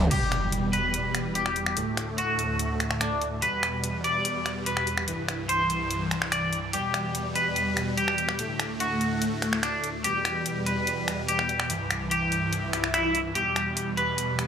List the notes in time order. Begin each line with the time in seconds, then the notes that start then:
0.01 mid tom
0.11 E2 B2 G3 G4, closed hi-hat, crash, impact
0.32 finger snap, closed hi-hat
0.52 closed hi-hat
0.73 B4, closed hi-hat
0.94 closed hi-hat
1.15 finger snap, closed hi-hat
1.35 G4, closed hi-hat
1.46 finger snap
1.56 closed hi-hat
1.66 finger snap
1.77 D2 A2 A3, closed hi-hat
1.97 finger snap, closed hi-hat
2.18 F#4, closed hi-hat
2.39 closed hi-hat
2.59 closed hi-hat
2.80 finger snap, closed hi-hat
2.91 finger snap
3.01 D4, finger snap, closed hi-hat
3.21 closed hi-hat
3.42 E2 B2 G3 B4, closed hi-hat
3.63 finger snap, closed hi-hat
3.84 closed hi-hat
4.04 D5, closed hi-hat
4.25 closed hi-hat
4.46 finger snap, closed hi-hat
4.66 B4, closed hi-hat
4.77 finger snap
4.87 closed hi-hat
4.98 finger snap
5.08 C2 G2 E3, closed hi-hat
5.29 finger snap, closed hi-hat
5.49 C5, closed hi-hat
5.70 closed hi-hat
5.91 closed hi-hat
6.11 finger snap, closed hi-hat
6.22 finger snap
6.32 D5, finger snap, closed hi-hat
6.53 closed hi-hat
6.73 E2 B2 G3 G4, closed hi-hat
6.94 finger snap, closed hi-hat
7.15 closed hi-hat
7.35 B4, closed hi-hat
7.56 closed hi-hat
7.77 finger snap, closed hi-hat
7.97 G4, closed hi-hat
8.08 finger snap
8.18 closed hi-hat
8.29 finger snap
8.39 D2 A2 A3, closed hi-hat
8.60 finger snap, closed hi-hat
8.80 F#4, closed hi-hat
9.01 closed hi-hat
9.22 closed hi-hat
9.42 finger snap, closed hi-hat
9.53 finger snap
9.63 D4, finger snap, closed hi-hat
9.84 closed hi-hat
10.04 E2 B2 G3 G4, closed hi-hat
10.25 finger snap, closed hi-hat
10.46 closed hi-hat
10.66 B4, closed hi-hat
10.87 closed hi-hat
11.08 finger snap, closed hi-hat
11.29 G4, closed hi-hat
11.39 finger snap
11.49 closed hi-hat
11.60 finger snap
11.70 C2 G2 E3, closed hi-hat
11.91 finger snap, closed hi-hat
12.11 G4, closed hi-hat
12.32 closed hi-hat
12.53 closed hi-hat, swell
12.73 finger snap, closed hi-hat
12.84 finger snap
12.94 E4, finger snap, closed hi-hat
13.15 closed hi-hat
13.35 E2 B2 G3 G4, closed hi-hat
13.56 finger snap, closed hi-hat
13.77 closed hi-hat
13.97 B4, closed hi-hat
14.18 closed hi-hat
14.39 finger snap, closed hi-hat